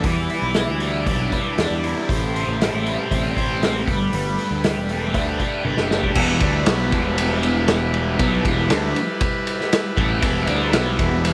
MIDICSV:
0, 0, Header, 1, 5, 480
1, 0, Start_track
1, 0, Key_signature, 1, "minor"
1, 0, Tempo, 509338
1, 33, Time_signature, 4, 2, 24, 8
1, 10678, End_track
2, 0, Start_track
2, 0, Title_t, "Transistor combo organ"
2, 0, Program_c, 0, 18
2, 0, Note_on_c, 0, 64, 62
2, 49, Note_on_c, 0, 74, 77
2, 53, Note_on_c, 0, 55, 66
2, 1918, Note_off_c, 0, 64, 0
2, 1944, Note_on_c, 0, 67, 63
2, 1945, Note_off_c, 0, 74, 0
2, 1947, Note_off_c, 0, 55, 0
2, 1951, Note_on_c, 0, 57, 70
2, 1956, Note_on_c, 0, 72, 72
2, 3621, Note_off_c, 0, 57, 0
2, 3623, Note_off_c, 0, 72, 0
2, 3629, Note_on_c, 0, 71, 70
2, 3635, Note_on_c, 0, 57, 60
2, 5758, Note_off_c, 0, 67, 0
2, 5775, Note_off_c, 0, 71, 0
2, 5778, Note_off_c, 0, 57, 0
2, 5803, Note_on_c, 0, 64, 72
2, 5805, Note_on_c, 0, 55, 66
2, 5806, Note_on_c, 0, 71, 85
2, 10678, Note_off_c, 0, 55, 0
2, 10678, Note_off_c, 0, 64, 0
2, 10678, Note_off_c, 0, 71, 0
2, 10678, End_track
3, 0, Start_track
3, 0, Title_t, "Distorted electric guitar"
3, 0, Program_c, 1, 30
3, 32, Note_on_c, 1, 52, 59
3, 282, Note_on_c, 1, 71, 67
3, 532, Note_on_c, 1, 64, 62
3, 767, Note_on_c, 1, 55, 60
3, 1025, Note_on_c, 1, 62, 69
3, 1234, Note_off_c, 1, 52, 0
3, 1240, Note_off_c, 1, 71, 0
3, 1252, Note_on_c, 1, 71, 65
3, 1483, Note_off_c, 1, 62, 0
3, 1494, Note_on_c, 1, 62, 54
3, 1716, Note_off_c, 1, 64, 0
3, 1728, Note_on_c, 1, 64, 67
3, 1962, Note_off_c, 1, 64, 0
3, 1965, Note_off_c, 1, 71, 0
3, 1966, Note_off_c, 1, 62, 0
3, 1976, Note_on_c, 1, 45, 70
3, 2004, Note_off_c, 1, 55, 0
3, 2218, Note_on_c, 1, 72, 69
3, 2459, Note_on_c, 1, 64, 68
3, 2696, Note_on_c, 1, 55, 61
3, 2926, Note_on_c, 1, 60, 70
3, 3169, Note_off_c, 1, 45, 0
3, 3173, Note_off_c, 1, 72, 0
3, 3184, Note_on_c, 1, 72, 78
3, 3415, Note_off_c, 1, 60, 0
3, 3426, Note_on_c, 1, 60, 64
3, 3651, Note_off_c, 1, 64, 0
3, 3652, Note_off_c, 1, 72, 0
3, 3653, Note_off_c, 1, 60, 0
3, 3667, Note_off_c, 1, 55, 0
3, 3667, Note_on_c, 1, 55, 64
3, 3894, Note_off_c, 1, 55, 0
3, 3905, Note_on_c, 1, 55, 71
3, 4136, Note_on_c, 1, 71, 60
3, 4386, Note_on_c, 1, 67, 64
3, 4619, Note_on_c, 1, 57, 57
3, 4848, Note_on_c, 1, 62, 71
3, 5072, Note_off_c, 1, 71, 0
3, 5083, Note_on_c, 1, 71, 65
3, 5094, Note_off_c, 1, 55, 0
3, 5318, Note_off_c, 1, 62, 0
3, 5329, Note_on_c, 1, 62, 55
3, 5554, Note_off_c, 1, 67, 0
3, 5566, Note_on_c, 1, 67, 64
3, 5798, Note_on_c, 1, 40, 90
3, 5803, Note_off_c, 1, 57, 0
3, 5803, Note_off_c, 1, 71, 0
3, 5804, Note_off_c, 1, 67, 0
3, 5806, Note_off_c, 1, 62, 0
3, 5807, Note_on_c, 1, 52, 108
3, 5809, Note_on_c, 1, 47, 105
3, 6033, Note_off_c, 1, 40, 0
3, 6034, Note_off_c, 1, 47, 0
3, 6037, Note_off_c, 1, 52, 0
3, 6037, Note_on_c, 1, 50, 87
3, 6040, Note_on_c, 1, 57, 88
3, 6049, Note_on_c, 1, 62, 87
3, 6267, Note_off_c, 1, 50, 0
3, 6271, Note_on_c, 1, 47, 92
3, 6274, Note_off_c, 1, 57, 0
3, 6277, Note_off_c, 1, 62, 0
3, 6280, Note_on_c, 1, 54, 103
3, 6281, Note_on_c, 1, 59, 103
3, 6509, Note_off_c, 1, 47, 0
3, 6513, Note_off_c, 1, 54, 0
3, 6514, Note_off_c, 1, 59, 0
3, 6521, Note_on_c, 1, 40, 85
3, 6526, Note_on_c, 1, 47, 79
3, 6527, Note_on_c, 1, 52, 90
3, 7702, Note_off_c, 1, 47, 0
3, 7712, Note_off_c, 1, 40, 0
3, 7713, Note_on_c, 1, 47, 90
3, 7715, Note_off_c, 1, 52, 0
3, 7724, Note_on_c, 1, 54, 97
3, 7727, Note_on_c, 1, 59, 88
3, 7948, Note_off_c, 1, 47, 0
3, 7954, Note_off_c, 1, 54, 0
3, 7956, Note_off_c, 1, 59, 0
3, 7969, Note_on_c, 1, 40, 80
3, 7975, Note_on_c, 1, 47, 81
3, 7977, Note_on_c, 1, 52, 84
3, 8194, Note_off_c, 1, 47, 0
3, 8196, Note_off_c, 1, 40, 0
3, 8197, Note_on_c, 1, 50, 93
3, 8200, Note_off_c, 1, 52, 0
3, 8205, Note_on_c, 1, 57, 96
3, 8213, Note_on_c, 1, 62, 101
3, 8430, Note_off_c, 1, 50, 0
3, 8434, Note_off_c, 1, 57, 0
3, 8438, Note_off_c, 1, 62, 0
3, 9390, Note_on_c, 1, 52, 90
3, 9392, Note_on_c, 1, 45, 88
3, 9397, Note_on_c, 1, 57, 106
3, 9614, Note_on_c, 1, 40, 105
3, 9618, Note_off_c, 1, 52, 0
3, 9621, Note_off_c, 1, 45, 0
3, 9624, Note_on_c, 1, 47, 92
3, 9628, Note_off_c, 1, 57, 0
3, 9629, Note_on_c, 1, 52, 104
3, 9854, Note_off_c, 1, 47, 0
3, 9856, Note_off_c, 1, 40, 0
3, 9858, Note_off_c, 1, 52, 0
3, 9858, Note_on_c, 1, 50, 87
3, 9862, Note_on_c, 1, 57, 82
3, 9865, Note_on_c, 1, 62, 81
3, 10098, Note_off_c, 1, 50, 0
3, 10100, Note_off_c, 1, 57, 0
3, 10101, Note_off_c, 1, 62, 0
3, 10111, Note_on_c, 1, 47, 101
3, 10115, Note_on_c, 1, 54, 96
3, 10125, Note_on_c, 1, 59, 104
3, 10344, Note_off_c, 1, 47, 0
3, 10346, Note_off_c, 1, 54, 0
3, 10351, Note_off_c, 1, 59, 0
3, 10353, Note_on_c, 1, 40, 89
3, 10358, Note_on_c, 1, 47, 92
3, 10362, Note_on_c, 1, 52, 95
3, 10678, Note_off_c, 1, 40, 0
3, 10678, Note_off_c, 1, 47, 0
3, 10678, Note_off_c, 1, 52, 0
3, 10678, End_track
4, 0, Start_track
4, 0, Title_t, "Fingered electric bass"
4, 0, Program_c, 2, 33
4, 39, Note_on_c, 2, 40, 90
4, 259, Note_off_c, 2, 40, 0
4, 394, Note_on_c, 2, 35, 94
4, 617, Note_off_c, 2, 35, 0
4, 647, Note_on_c, 2, 38, 87
4, 1005, Note_on_c, 2, 35, 87
4, 1019, Note_off_c, 2, 38, 0
4, 1223, Note_off_c, 2, 35, 0
4, 1488, Note_on_c, 2, 40, 93
4, 1594, Note_off_c, 2, 40, 0
4, 1601, Note_on_c, 2, 40, 80
4, 1821, Note_off_c, 2, 40, 0
4, 1971, Note_on_c, 2, 33, 85
4, 2299, Note_off_c, 2, 33, 0
4, 2329, Note_on_c, 2, 33, 88
4, 2546, Note_off_c, 2, 33, 0
4, 2576, Note_on_c, 2, 33, 81
4, 2790, Note_off_c, 2, 33, 0
4, 2933, Note_on_c, 2, 33, 97
4, 3149, Note_off_c, 2, 33, 0
4, 3171, Note_on_c, 2, 33, 73
4, 3611, Note_off_c, 2, 33, 0
4, 3654, Note_on_c, 2, 31, 76
4, 3870, Note_off_c, 2, 31, 0
4, 3895, Note_on_c, 2, 31, 94
4, 4111, Note_off_c, 2, 31, 0
4, 4246, Note_on_c, 2, 38, 98
4, 4467, Note_off_c, 2, 38, 0
4, 4494, Note_on_c, 2, 28, 84
4, 4846, Note_off_c, 2, 28, 0
4, 4846, Note_on_c, 2, 38, 94
4, 5067, Note_off_c, 2, 38, 0
4, 5326, Note_on_c, 2, 31, 83
4, 5435, Note_off_c, 2, 31, 0
4, 5444, Note_on_c, 2, 30, 66
4, 5666, Note_off_c, 2, 30, 0
4, 5803, Note_on_c, 2, 28, 86
4, 6026, Note_off_c, 2, 28, 0
4, 6043, Note_on_c, 2, 38, 84
4, 6266, Note_off_c, 2, 38, 0
4, 6289, Note_on_c, 2, 35, 90
4, 6509, Note_off_c, 2, 35, 0
4, 6524, Note_on_c, 2, 28, 101
4, 7683, Note_off_c, 2, 28, 0
4, 7725, Note_on_c, 2, 35, 95
4, 7945, Note_off_c, 2, 35, 0
4, 7963, Note_on_c, 2, 28, 89
4, 8181, Note_off_c, 2, 28, 0
4, 8187, Note_on_c, 2, 38, 96
4, 8415, Note_off_c, 2, 38, 0
4, 9398, Note_on_c, 2, 33, 98
4, 9619, Note_off_c, 2, 33, 0
4, 9636, Note_on_c, 2, 28, 99
4, 9858, Note_off_c, 2, 28, 0
4, 9868, Note_on_c, 2, 38, 85
4, 10093, Note_off_c, 2, 38, 0
4, 10113, Note_on_c, 2, 35, 90
4, 10335, Note_off_c, 2, 35, 0
4, 10360, Note_on_c, 2, 28, 101
4, 10678, Note_off_c, 2, 28, 0
4, 10678, End_track
5, 0, Start_track
5, 0, Title_t, "Drums"
5, 33, Note_on_c, 9, 46, 62
5, 37, Note_on_c, 9, 36, 110
5, 127, Note_off_c, 9, 46, 0
5, 132, Note_off_c, 9, 36, 0
5, 278, Note_on_c, 9, 46, 44
5, 372, Note_off_c, 9, 46, 0
5, 511, Note_on_c, 9, 46, 56
5, 517, Note_on_c, 9, 38, 100
5, 605, Note_off_c, 9, 46, 0
5, 611, Note_off_c, 9, 38, 0
5, 755, Note_on_c, 9, 46, 44
5, 849, Note_off_c, 9, 46, 0
5, 1003, Note_on_c, 9, 36, 93
5, 1004, Note_on_c, 9, 46, 61
5, 1097, Note_off_c, 9, 36, 0
5, 1098, Note_off_c, 9, 46, 0
5, 1245, Note_on_c, 9, 36, 73
5, 1245, Note_on_c, 9, 46, 42
5, 1339, Note_off_c, 9, 36, 0
5, 1340, Note_off_c, 9, 46, 0
5, 1489, Note_on_c, 9, 46, 63
5, 1495, Note_on_c, 9, 38, 91
5, 1583, Note_off_c, 9, 46, 0
5, 1589, Note_off_c, 9, 38, 0
5, 1731, Note_on_c, 9, 46, 46
5, 1825, Note_off_c, 9, 46, 0
5, 1971, Note_on_c, 9, 36, 103
5, 1977, Note_on_c, 9, 46, 70
5, 2065, Note_off_c, 9, 36, 0
5, 2072, Note_off_c, 9, 46, 0
5, 2223, Note_on_c, 9, 46, 47
5, 2317, Note_off_c, 9, 46, 0
5, 2463, Note_on_c, 9, 46, 65
5, 2469, Note_on_c, 9, 38, 98
5, 2557, Note_off_c, 9, 46, 0
5, 2563, Note_off_c, 9, 38, 0
5, 2699, Note_on_c, 9, 46, 46
5, 2793, Note_off_c, 9, 46, 0
5, 2933, Note_on_c, 9, 36, 85
5, 2937, Note_on_c, 9, 46, 62
5, 3027, Note_off_c, 9, 36, 0
5, 3031, Note_off_c, 9, 46, 0
5, 3173, Note_on_c, 9, 36, 75
5, 3180, Note_on_c, 9, 46, 46
5, 3267, Note_off_c, 9, 36, 0
5, 3274, Note_off_c, 9, 46, 0
5, 3417, Note_on_c, 9, 46, 60
5, 3423, Note_on_c, 9, 38, 84
5, 3511, Note_off_c, 9, 46, 0
5, 3517, Note_off_c, 9, 38, 0
5, 3652, Note_on_c, 9, 36, 99
5, 3660, Note_on_c, 9, 46, 46
5, 3746, Note_off_c, 9, 36, 0
5, 3754, Note_off_c, 9, 46, 0
5, 3891, Note_on_c, 9, 46, 61
5, 3985, Note_off_c, 9, 46, 0
5, 4131, Note_on_c, 9, 46, 40
5, 4226, Note_off_c, 9, 46, 0
5, 4372, Note_on_c, 9, 46, 62
5, 4378, Note_on_c, 9, 38, 97
5, 4467, Note_off_c, 9, 46, 0
5, 4472, Note_off_c, 9, 38, 0
5, 4609, Note_on_c, 9, 46, 46
5, 4704, Note_off_c, 9, 46, 0
5, 4846, Note_on_c, 9, 46, 58
5, 4848, Note_on_c, 9, 36, 91
5, 4940, Note_off_c, 9, 46, 0
5, 4942, Note_off_c, 9, 36, 0
5, 5086, Note_on_c, 9, 36, 74
5, 5086, Note_on_c, 9, 46, 41
5, 5180, Note_off_c, 9, 36, 0
5, 5180, Note_off_c, 9, 46, 0
5, 5321, Note_on_c, 9, 48, 44
5, 5415, Note_off_c, 9, 48, 0
5, 5441, Note_on_c, 9, 38, 60
5, 5535, Note_off_c, 9, 38, 0
5, 5571, Note_on_c, 9, 38, 78
5, 5665, Note_off_c, 9, 38, 0
5, 5687, Note_on_c, 9, 36, 76
5, 5781, Note_off_c, 9, 36, 0
5, 5798, Note_on_c, 9, 49, 120
5, 5805, Note_on_c, 9, 36, 101
5, 5892, Note_off_c, 9, 49, 0
5, 5899, Note_off_c, 9, 36, 0
5, 6035, Note_on_c, 9, 51, 68
5, 6043, Note_on_c, 9, 36, 105
5, 6129, Note_off_c, 9, 51, 0
5, 6137, Note_off_c, 9, 36, 0
5, 6278, Note_on_c, 9, 51, 94
5, 6284, Note_on_c, 9, 38, 104
5, 6372, Note_off_c, 9, 51, 0
5, 6378, Note_off_c, 9, 38, 0
5, 6523, Note_on_c, 9, 51, 66
5, 6526, Note_on_c, 9, 36, 95
5, 6617, Note_off_c, 9, 51, 0
5, 6620, Note_off_c, 9, 36, 0
5, 6764, Note_on_c, 9, 51, 99
5, 6858, Note_off_c, 9, 51, 0
5, 7002, Note_on_c, 9, 51, 68
5, 7096, Note_off_c, 9, 51, 0
5, 7236, Note_on_c, 9, 51, 85
5, 7242, Note_on_c, 9, 38, 109
5, 7330, Note_off_c, 9, 51, 0
5, 7336, Note_off_c, 9, 38, 0
5, 7479, Note_on_c, 9, 51, 65
5, 7573, Note_off_c, 9, 51, 0
5, 7720, Note_on_c, 9, 51, 89
5, 7721, Note_on_c, 9, 36, 108
5, 7814, Note_off_c, 9, 51, 0
5, 7816, Note_off_c, 9, 36, 0
5, 7963, Note_on_c, 9, 36, 102
5, 7965, Note_on_c, 9, 51, 70
5, 8057, Note_off_c, 9, 36, 0
5, 8059, Note_off_c, 9, 51, 0
5, 8198, Note_on_c, 9, 51, 86
5, 8204, Note_on_c, 9, 38, 101
5, 8293, Note_off_c, 9, 51, 0
5, 8298, Note_off_c, 9, 38, 0
5, 8444, Note_on_c, 9, 51, 66
5, 8538, Note_off_c, 9, 51, 0
5, 8675, Note_on_c, 9, 51, 90
5, 8680, Note_on_c, 9, 36, 108
5, 8770, Note_off_c, 9, 51, 0
5, 8774, Note_off_c, 9, 36, 0
5, 8922, Note_on_c, 9, 51, 71
5, 9017, Note_off_c, 9, 51, 0
5, 9055, Note_on_c, 9, 38, 32
5, 9149, Note_off_c, 9, 38, 0
5, 9165, Note_on_c, 9, 51, 89
5, 9170, Note_on_c, 9, 38, 104
5, 9259, Note_off_c, 9, 51, 0
5, 9265, Note_off_c, 9, 38, 0
5, 9399, Note_on_c, 9, 36, 105
5, 9404, Note_on_c, 9, 51, 69
5, 9493, Note_off_c, 9, 36, 0
5, 9498, Note_off_c, 9, 51, 0
5, 9634, Note_on_c, 9, 51, 97
5, 9637, Note_on_c, 9, 36, 110
5, 9728, Note_off_c, 9, 51, 0
5, 9731, Note_off_c, 9, 36, 0
5, 9869, Note_on_c, 9, 51, 77
5, 9964, Note_off_c, 9, 51, 0
5, 10113, Note_on_c, 9, 51, 89
5, 10119, Note_on_c, 9, 38, 104
5, 10207, Note_off_c, 9, 51, 0
5, 10213, Note_off_c, 9, 38, 0
5, 10357, Note_on_c, 9, 36, 100
5, 10357, Note_on_c, 9, 51, 70
5, 10451, Note_off_c, 9, 36, 0
5, 10451, Note_off_c, 9, 51, 0
5, 10599, Note_on_c, 9, 51, 96
5, 10678, Note_off_c, 9, 51, 0
5, 10678, End_track
0, 0, End_of_file